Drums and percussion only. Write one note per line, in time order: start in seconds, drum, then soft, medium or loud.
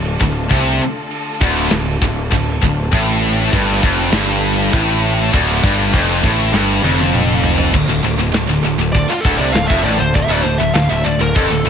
0.21 kick loud
0.51 kick loud
0.51 crash medium
1.11 crash medium
1.41 kick loud
1.71 snare loud
1.71 crash medium
2.02 kick loud
2.31 kick medium
2.31 crash medium
2.63 kick medium
2.93 kick loud
2.93 crash medium
3.53 kick loud
3.53 crash medium
3.83 kick loud
4.13 snare loud
4.13 crash medium
4.73 kick loud
4.73 crash medium
5.34 kick loud
5.34 crash medium
5.64 kick loud
5.94 kick loud
5.94 crash medium
6.24 kick loud
6.54 snare medium
6.84 high tom medium
7.00 high tom medium
7.15 mid tom loud
7.44 floor tom loud
7.58 floor tom medium
7.74 kick loud
7.74 crash loud
7.74 china medium
8.34 snare loud
8.34 china medium
8.95 kick medium
8.95 china medium
9.25 kick loud
9.55 snare loud
9.55 china medium
9.70 kick loud
10.15 kick loud
10.15 china medium
10.75 snare loud
10.75 china medium
11.36 kick loud
11.36 china medium